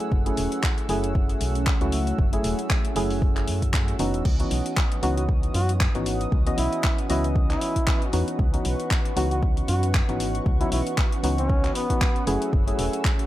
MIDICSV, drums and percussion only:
0, 0, Header, 1, 2, 480
1, 0, Start_track
1, 0, Key_signature, 4, "minor"
1, 0, Tempo, 517241
1, 107, Time_signature, 4, 2, 24, 8
1, 12309, End_track
2, 0, Start_track
2, 0, Title_t, "Drums"
2, 1, Note_on_c, 9, 42, 64
2, 94, Note_off_c, 9, 42, 0
2, 108, Note_on_c, 9, 36, 106
2, 200, Note_off_c, 9, 36, 0
2, 242, Note_on_c, 9, 42, 53
2, 335, Note_off_c, 9, 42, 0
2, 346, Note_on_c, 9, 46, 100
2, 439, Note_off_c, 9, 46, 0
2, 482, Note_on_c, 9, 42, 65
2, 575, Note_off_c, 9, 42, 0
2, 588, Note_on_c, 9, 36, 104
2, 588, Note_on_c, 9, 39, 112
2, 681, Note_off_c, 9, 36, 0
2, 681, Note_off_c, 9, 39, 0
2, 722, Note_on_c, 9, 42, 50
2, 814, Note_off_c, 9, 42, 0
2, 826, Note_on_c, 9, 46, 97
2, 918, Note_off_c, 9, 46, 0
2, 962, Note_on_c, 9, 42, 65
2, 1055, Note_off_c, 9, 42, 0
2, 1068, Note_on_c, 9, 36, 105
2, 1161, Note_off_c, 9, 36, 0
2, 1201, Note_on_c, 9, 42, 37
2, 1294, Note_off_c, 9, 42, 0
2, 1306, Note_on_c, 9, 46, 96
2, 1399, Note_off_c, 9, 46, 0
2, 1441, Note_on_c, 9, 42, 64
2, 1534, Note_off_c, 9, 42, 0
2, 1547, Note_on_c, 9, 36, 112
2, 1547, Note_on_c, 9, 39, 112
2, 1640, Note_off_c, 9, 36, 0
2, 1640, Note_off_c, 9, 39, 0
2, 1681, Note_on_c, 9, 42, 37
2, 1773, Note_off_c, 9, 42, 0
2, 1785, Note_on_c, 9, 46, 97
2, 1878, Note_off_c, 9, 46, 0
2, 1921, Note_on_c, 9, 42, 64
2, 2014, Note_off_c, 9, 42, 0
2, 2027, Note_on_c, 9, 36, 108
2, 2120, Note_off_c, 9, 36, 0
2, 2161, Note_on_c, 9, 42, 56
2, 2254, Note_off_c, 9, 42, 0
2, 2266, Note_on_c, 9, 46, 98
2, 2358, Note_off_c, 9, 46, 0
2, 2401, Note_on_c, 9, 42, 68
2, 2494, Note_off_c, 9, 42, 0
2, 2507, Note_on_c, 9, 36, 109
2, 2507, Note_on_c, 9, 39, 111
2, 2600, Note_off_c, 9, 36, 0
2, 2600, Note_off_c, 9, 39, 0
2, 2641, Note_on_c, 9, 42, 50
2, 2734, Note_off_c, 9, 42, 0
2, 2745, Note_on_c, 9, 46, 96
2, 2838, Note_off_c, 9, 46, 0
2, 2881, Note_on_c, 9, 46, 55
2, 2974, Note_off_c, 9, 46, 0
2, 2987, Note_on_c, 9, 36, 107
2, 3080, Note_off_c, 9, 36, 0
2, 3122, Note_on_c, 9, 42, 36
2, 3124, Note_on_c, 9, 39, 36
2, 3215, Note_off_c, 9, 42, 0
2, 3217, Note_off_c, 9, 39, 0
2, 3225, Note_on_c, 9, 46, 95
2, 3318, Note_off_c, 9, 46, 0
2, 3362, Note_on_c, 9, 42, 66
2, 3363, Note_on_c, 9, 36, 58
2, 3455, Note_off_c, 9, 36, 0
2, 3455, Note_off_c, 9, 42, 0
2, 3467, Note_on_c, 9, 36, 111
2, 3467, Note_on_c, 9, 39, 116
2, 3559, Note_off_c, 9, 36, 0
2, 3560, Note_off_c, 9, 39, 0
2, 3601, Note_on_c, 9, 42, 38
2, 3694, Note_off_c, 9, 42, 0
2, 3705, Note_on_c, 9, 46, 100
2, 3798, Note_off_c, 9, 46, 0
2, 3842, Note_on_c, 9, 42, 66
2, 3935, Note_off_c, 9, 42, 0
2, 3945, Note_on_c, 9, 49, 73
2, 3946, Note_on_c, 9, 36, 114
2, 4038, Note_off_c, 9, 49, 0
2, 4039, Note_off_c, 9, 36, 0
2, 4081, Note_on_c, 9, 42, 52
2, 4173, Note_off_c, 9, 42, 0
2, 4185, Note_on_c, 9, 46, 103
2, 4278, Note_off_c, 9, 46, 0
2, 4322, Note_on_c, 9, 42, 68
2, 4415, Note_off_c, 9, 42, 0
2, 4426, Note_on_c, 9, 36, 114
2, 4429, Note_on_c, 9, 39, 120
2, 4519, Note_off_c, 9, 36, 0
2, 4521, Note_off_c, 9, 39, 0
2, 4562, Note_on_c, 9, 42, 52
2, 4655, Note_off_c, 9, 42, 0
2, 4666, Note_on_c, 9, 46, 102
2, 4759, Note_off_c, 9, 46, 0
2, 4802, Note_on_c, 9, 42, 65
2, 4895, Note_off_c, 9, 42, 0
2, 4906, Note_on_c, 9, 36, 111
2, 4999, Note_off_c, 9, 36, 0
2, 5041, Note_on_c, 9, 42, 37
2, 5134, Note_off_c, 9, 42, 0
2, 5145, Note_on_c, 9, 46, 100
2, 5238, Note_off_c, 9, 46, 0
2, 5281, Note_on_c, 9, 42, 67
2, 5374, Note_off_c, 9, 42, 0
2, 5386, Note_on_c, 9, 36, 114
2, 5387, Note_on_c, 9, 39, 115
2, 5479, Note_off_c, 9, 36, 0
2, 5480, Note_off_c, 9, 39, 0
2, 5521, Note_on_c, 9, 42, 38
2, 5614, Note_off_c, 9, 42, 0
2, 5625, Note_on_c, 9, 46, 101
2, 5718, Note_off_c, 9, 46, 0
2, 5760, Note_on_c, 9, 42, 65
2, 5853, Note_off_c, 9, 42, 0
2, 5866, Note_on_c, 9, 36, 116
2, 5959, Note_off_c, 9, 36, 0
2, 6000, Note_on_c, 9, 42, 53
2, 6093, Note_off_c, 9, 42, 0
2, 6104, Note_on_c, 9, 46, 111
2, 6197, Note_off_c, 9, 46, 0
2, 6241, Note_on_c, 9, 42, 64
2, 6334, Note_off_c, 9, 42, 0
2, 6346, Note_on_c, 9, 36, 118
2, 6347, Note_on_c, 9, 39, 118
2, 6439, Note_off_c, 9, 36, 0
2, 6440, Note_off_c, 9, 39, 0
2, 6482, Note_on_c, 9, 42, 50
2, 6574, Note_off_c, 9, 42, 0
2, 6585, Note_on_c, 9, 46, 106
2, 6678, Note_off_c, 9, 46, 0
2, 6721, Note_on_c, 9, 42, 64
2, 6814, Note_off_c, 9, 42, 0
2, 6826, Note_on_c, 9, 36, 114
2, 6919, Note_off_c, 9, 36, 0
2, 6961, Note_on_c, 9, 42, 37
2, 6964, Note_on_c, 9, 39, 37
2, 7054, Note_off_c, 9, 42, 0
2, 7056, Note_off_c, 9, 39, 0
2, 7066, Note_on_c, 9, 46, 105
2, 7159, Note_off_c, 9, 46, 0
2, 7201, Note_on_c, 9, 42, 65
2, 7202, Note_on_c, 9, 36, 59
2, 7294, Note_off_c, 9, 42, 0
2, 7295, Note_off_c, 9, 36, 0
2, 7306, Note_on_c, 9, 36, 119
2, 7307, Note_on_c, 9, 39, 122
2, 7399, Note_off_c, 9, 36, 0
2, 7400, Note_off_c, 9, 39, 0
2, 7441, Note_on_c, 9, 42, 36
2, 7534, Note_off_c, 9, 42, 0
2, 7545, Note_on_c, 9, 46, 106
2, 7638, Note_off_c, 9, 46, 0
2, 7682, Note_on_c, 9, 42, 62
2, 7774, Note_off_c, 9, 42, 0
2, 7786, Note_on_c, 9, 36, 119
2, 7879, Note_off_c, 9, 36, 0
2, 7922, Note_on_c, 9, 42, 51
2, 8015, Note_off_c, 9, 42, 0
2, 8026, Note_on_c, 9, 46, 107
2, 8119, Note_off_c, 9, 46, 0
2, 8162, Note_on_c, 9, 42, 61
2, 8255, Note_off_c, 9, 42, 0
2, 8266, Note_on_c, 9, 36, 118
2, 8268, Note_on_c, 9, 39, 114
2, 8359, Note_off_c, 9, 36, 0
2, 8361, Note_off_c, 9, 39, 0
2, 8402, Note_on_c, 9, 42, 47
2, 8495, Note_off_c, 9, 42, 0
2, 8506, Note_on_c, 9, 46, 110
2, 8599, Note_off_c, 9, 46, 0
2, 8642, Note_on_c, 9, 42, 62
2, 8735, Note_off_c, 9, 42, 0
2, 8746, Note_on_c, 9, 36, 116
2, 8839, Note_off_c, 9, 36, 0
2, 8882, Note_on_c, 9, 42, 35
2, 8975, Note_off_c, 9, 42, 0
2, 8986, Note_on_c, 9, 46, 109
2, 9079, Note_off_c, 9, 46, 0
2, 9122, Note_on_c, 9, 42, 63
2, 9215, Note_off_c, 9, 42, 0
2, 9227, Note_on_c, 9, 36, 119
2, 9229, Note_on_c, 9, 39, 118
2, 9319, Note_off_c, 9, 36, 0
2, 9321, Note_off_c, 9, 39, 0
2, 9363, Note_on_c, 9, 42, 36
2, 9456, Note_off_c, 9, 42, 0
2, 9467, Note_on_c, 9, 46, 108
2, 9559, Note_off_c, 9, 46, 0
2, 9603, Note_on_c, 9, 42, 63
2, 9696, Note_off_c, 9, 42, 0
2, 9707, Note_on_c, 9, 36, 118
2, 9800, Note_off_c, 9, 36, 0
2, 9843, Note_on_c, 9, 42, 49
2, 9936, Note_off_c, 9, 42, 0
2, 9947, Note_on_c, 9, 46, 105
2, 10040, Note_off_c, 9, 46, 0
2, 10083, Note_on_c, 9, 42, 61
2, 10176, Note_off_c, 9, 42, 0
2, 10187, Note_on_c, 9, 36, 119
2, 10189, Note_on_c, 9, 39, 109
2, 10280, Note_off_c, 9, 36, 0
2, 10282, Note_off_c, 9, 39, 0
2, 10324, Note_on_c, 9, 42, 46
2, 10416, Note_off_c, 9, 42, 0
2, 10427, Note_on_c, 9, 46, 106
2, 10520, Note_off_c, 9, 46, 0
2, 10563, Note_on_c, 9, 42, 62
2, 10656, Note_off_c, 9, 42, 0
2, 10667, Note_on_c, 9, 36, 117
2, 10760, Note_off_c, 9, 36, 0
2, 10803, Note_on_c, 9, 42, 34
2, 10806, Note_on_c, 9, 39, 36
2, 10896, Note_off_c, 9, 42, 0
2, 10898, Note_off_c, 9, 39, 0
2, 10908, Note_on_c, 9, 46, 107
2, 11000, Note_off_c, 9, 46, 0
2, 11043, Note_on_c, 9, 36, 62
2, 11043, Note_on_c, 9, 42, 63
2, 11136, Note_off_c, 9, 36, 0
2, 11136, Note_off_c, 9, 42, 0
2, 11147, Note_on_c, 9, 36, 120
2, 11150, Note_on_c, 9, 39, 113
2, 11240, Note_off_c, 9, 36, 0
2, 11242, Note_off_c, 9, 39, 0
2, 11283, Note_on_c, 9, 42, 34
2, 11376, Note_off_c, 9, 42, 0
2, 11387, Note_on_c, 9, 46, 103
2, 11480, Note_off_c, 9, 46, 0
2, 11523, Note_on_c, 9, 42, 62
2, 11616, Note_off_c, 9, 42, 0
2, 11627, Note_on_c, 9, 36, 115
2, 11720, Note_off_c, 9, 36, 0
2, 11763, Note_on_c, 9, 42, 49
2, 11856, Note_off_c, 9, 42, 0
2, 11867, Note_on_c, 9, 46, 107
2, 11960, Note_off_c, 9, 46, 0
2, 12003, Note_on_c, 9, 42, 62
2, 12095, Note_off_c, 9, 42, 0
2, 12107, Note_on_c, 9, 36, 116
2, 12109, Note_on_c, 9, 39, 109
2, 12200, Note_off_c, 9, 36, 0
2, 12201, Note_off_c, 9, 39, 0
2, 12243, Note_on_c, 9, 42, 46
2, 12309, Note_off_c, 9, 42, 0
2, 12309, End_track
0, 0, End_of_file